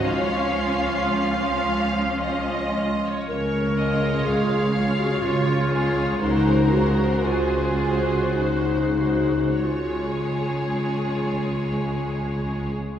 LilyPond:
<<
  \new Staff \with { instrumentName = "Violin section" } { \time 3/4 \key des \major \tempo 4 = 55 f''2~ f''8 r8 | r8 des''4 des''4 des''8 | c''8 c''4 c''4 c''8 | des''2. | }
  \new Staff \with { instrumentName = "Violin section" } { \time 3/4 \key des \major <des'' f''>4 f''4 ees''8. des''16 | des''8 ees''8 f''4 des''8 aes'8 | bes'4 aes'4 c''8 r8 | aes'2. | }
  \new Staff \with { instrumentName = "Clarinet" } { \time 3/4 \key des \major r2. | bes'4 aes'8. ges'16 f'4 | ees'8 ges'8 f'4 ees'4 | f'2. | }
  \new Staff \with { instrumentName = "Viola section" } { \clef bass \time 3/4 \key des \major <f f'>2. | r8 <aes f'>4 <aes f'>4 <aes f'>8 | <aes ges'>8 <aes ges'>4 <aes ges'>4 <aes ges'>8 | aes2. | }
  \new Staff \with { instrumentName = "Cello section" } { \clef bass \time 3/4 \key des \major des'2~ des'8 r8 | des4 des4 des4 | des4 des4 des4 | des2. | }
  \new Staff \with { instrumentName = "Double bass section" } { \clef bass \time 3/4 \key des \major des,2. | des,4 des,4 des,4 | des,4 des,4 des,4 | des,2. | }
>>